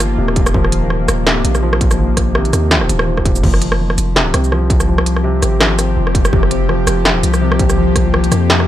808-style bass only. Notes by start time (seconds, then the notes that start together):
Already playing: G1
0.18 D#1
0.54 D#1
1.09 D#1
1.45 A#1
2.53 D#2
2.89 D#1
3.44 F1
3.98 F1
4.34 C2
5.42 G#1
5.97 F1
6.33 F1
6.87 F1
7.23 C2
8.32 F2